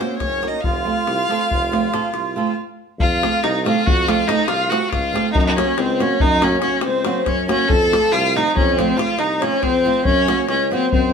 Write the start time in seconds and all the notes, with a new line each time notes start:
Already playing: C4 C5
0.00 A#3 C#4 F#4 A#4, davul high
0.11 davul high
0.17 F#1 C#4 C#5, davul high, davul low
0.41 A#3 C#4 F#4 A#4, davul high
0.48 D#4 D#5
0.61 F1 F4 F5, davul low
0.76 davul high
0.85 A3 C4 F4 A4
0.98 davul high
1.07 C2, davul high
1.29 A3 C4 F4 A4, davul high
1.41 davul high
1.50 F1, davul low
1.63 davul high
1.72 A3 C4 F4 A4, davul high
1.92 A3 C4 F4 A4, davul high
2.13 C2, davul high
2.25 davul high
2.36 A3 C4 F4 A4
2.47 davul high
2.98 F2 F4 F5, davul low
3.22 A3 C4 F4 A4, davul high
3.43 C2 D#4 D#5, davul high
3.56 davul high
3.65 A3 C4 F4 A4 F5, davul high
3.76 davul high
3.86 F2 F#4 F#5, davul low
4.08 A3 C4 F4 A4 F5, davul high
4.18 davul high
4.28 A3 C4 D#4 F4 A4 D#5, davul high
4.38 davul high
4.47 C2 F4 F5, davul high
4.60 davul high
4.70 A3 C4 F4 F#4 A4 F#5, davul high
4.89 C#2 F4 F5, davul high, davul low
5.13 A3 C4 F4 A4, davul high
5.32 F#2 D#4 D#5, davul low
5.39 D#4 D#5
5.46 D#4 D#5
5.57 F#3 A#3 C#4 F#4 C#5, davul high
5.78 C#2 C4 C5, davul high
5.90 davul high
6.00 F#3 A#3 C#4 F#4 C#5, davul high
6.11 davul high
6.20 F#2 D#4 D#5, davul low
6.42 F#3 A#3 C#4 F#4 C#5, davul high
6.52 davul high
6.61 F#3 A#3 C#4 F#4 C#5, davul high
6.76 C#4 C#5
6.81 C#2 C4 C5, davul high
6.93 davul high
7.05 F#3 A#3 C#4 F#4, davul high
7.25 F#2 C#4 C#5, davul high, davul low
7.39 davul high
7.48 F#3 A#3 C#4 F#4 C#5, davul high
7.69 F2 A4 A5, davul low
7.91 F3 A3 C4 F4, davul high
8.12 C2 F4 F5, davul high
8.25 davul high
8.35 F3 A3 C4 D#4 F4 D#5, davul high
8.47 davul high
8.55 F2 C#4 C#5, davul low
8.77 F3 A3 C4 F4 C5, davul high
8.90 davul high
8.97 F3 A3 C4 F4 F5, davul high
9.09 davul high
9.18 C2 D#4 D#5, davul high
9.30 davul high
9.40 F3 A3 C4 C#4 F4 C#5, davul high
9.59 F2 C4 C5, davul high, davul low
9.85 F3 A3 C4 F4
10.05 F#2 C#4 C#5, davul low
10.28 F#3 A#3 C#4 F#4, davul high
10.39 davul high
10.48 C#2 C#4 C#5, davul high
10.71 F#3 A#3 C4 C#4 F#4 C5, davul high
10.83 davul high
10.91 F#2 C4 C5, davul low
11.04 davul high